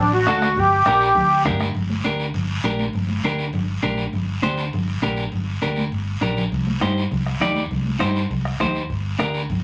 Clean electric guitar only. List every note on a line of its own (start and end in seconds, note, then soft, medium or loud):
0.27 0.48 D4 medium
0.27 0.48 F#4 medium
0.27 0.48 A4 medium
0.87 1.07 D4 medium
0.87 1.08 G4 medium
0.87 1.08 A#4 medium
1.45 1.66 D4 medium
1.45 1.67 G4 medium
1.45 1.67 A#4 medium
2.04 2.26 D4 medium
2.04 2.26 G4 medium
2.04 2.26 A#4 medium
2.64 2.85 D4 medium
2.64 2.85 G4 medium
2.64 2.86 A#4 medium
3.25 3.45 D4 medium
3.25 3.45 G4 medium
3.25 3.46 A#4 medium
3.83 4.04 D4 medium
3.83 4.04 G4 medium
3.83 4.04 A#4 medium
4.42 4.64 D4 medium
4.42 4.64 G4 medium
4.42 4.64 C5 medium
5.02 5.23 D4 medium
5.02 5.24 G4 medium
5.02 5.24 A#4 medium
5.62 5.83 D4 medium
5.62 5.83 G4 medium
5.62 5.83 A#4 medium
6.21 6.42 D4 medium
6.21 6.43 G4 medium
6.21 6.43 A#4 medium
6.81 7.02 D#4 medium
6.81 7.02 G4 medium
6.81 7.03 C5 medium
7.41 7.62 D#4 medium
7.41 7.62 G4 medium
7.41 7.62 D5 medium
7.99 8.21 D#4 medium
7.99 8.21 G4 medium
7.99 8.21 C5 medium
8.60 8.81 D#4 medium
8.60 8.81 G4 medium
8.60 8.81 C5 loud
9.19 9.40 D4 medium
9.19 9.40 G4 medium
9.19 9.41 A#4 medium